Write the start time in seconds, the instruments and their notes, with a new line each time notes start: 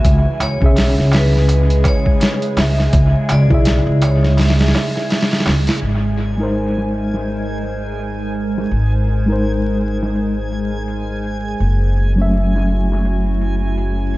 Already playing: synth texture G#3 G#5, ambient pad E4, vibraphone E5
0.04 upright bass C#2, ambient pad C#3 G#3 G#4, kick, closed hi-hat, darbuka tek
0.25 darbuka tek
0.40 upright bass C#2, vibraphone C#5, closed hi-hat, darbuka tek
0.60 upright bass B1, reed electric piano C#3 C#4 G#4, kick, darbuka tek
0.66 reed electric piano E5
0.76 snare, open hi-hat, darbuka tek
0.98 upright bass C#2, snare
1.12 vibraphone B4, snare, open hi-hat, darbuka tek
1.33 snare, darbuka tek
1.48 closed hi-hat, darbuka tek
1.70 closed hi-hat, darbuka tek
1.84 kick, closed hi-hat, darbuka tek
1.88 vibraphone C#5
2.06 kick, darbuka tek
2.20 snare, closed hi-hat, darbuka tek
2.42 closed hi-hat, darbuka tek
2.57 upright bass C#2, vibraphone E5, snare, open hi-hat, darbuka tek
2.78 snare, darbuka tek
2.93 upright bass C#2, kick, closed hi-hat, darbuka tek
3.14 darbuka tek
3.29 upright bass C#2, vibraphone D5, closed hi-hat, darbuka tek
3.48 upright bass B1, reed electric piano C#3 E4, kick, darbuka tek
3.52 reed electric piano G#4 E5
3.65 snare, closed hi-hat, darbuka tek
3.86 upright bass C#2, darbuka tek
4.02 vibraphone C#5, closed hi-hat, darbuka tek
4.23 snare, darbuka tek
4.37 vibraphone E5, snare, open hi-hat, darbuka tek
4.48 snare, open hi-hat
4.59 snare, open hi-hat, darbuka tek
4.66 snare, open hi-hat
4.74 snare, open hi-hat, darbuka tek
4.96 snare, darbuka tek
5.10 snare, open hi-hat, darbuka tek
5.21 snare, open hi-hat
5.31 snare, open hi-hat, darbuka tek
5.39 snare, open hi-hat
5.46 upright bass C#2, snare, open hi-hat, darbuka tek
5.67 snare, open hi-hat, darbuka tek
5.82 upright bass G#1, synth texture G#3 G#5, ambient pad G#3 D#4 A#4 C5, closed hi-hat
6.18 closed hi-hat
6.37 reed electric piano G#3 D#4 A#4
6.43 reed electric piano C5
6.54 open hi-hat
6.78 snare
6.91 closed hi-hat
7.14 snare
7.27 closed hi-hat
7.48 closed hi-hat
7.63 closed hi-hat
7.99 closed hi-hat
8.20 closed hi-hat
8.35 closed hi-hat
8.58 snare
8.71 upright bass G#1, closed hi-hat
9.07 closed hi-hat
9.26 reed electric piano G#3 D#4 A#4
9.32 reed electric piano C5
9.44 closed hi-hat
9.80 closed hi-hat
10.03 snare
10.16 closed hi-hat
10.52 closed hi-hat
10.88 closed hi-hat
11.24 closed hi-hat
11.60 upright bass F#1, ambient pad F#3 C#4 E4 F#4, closed hi-hat
11.97 closed hi-hat
12.16 reed electric piano F#3 A3 C#4
12.21 reed electric piano E5
12.33 open hi-hat
12.56 snare
12.69 closed hi-hat
12.92 snare
13.05 closed hi-hat
13.26 closed hi-hat
13.41 closed hi-hat
13.78 closed hi-hat
13.99 closed hi-hat
14.14 closed hi-hat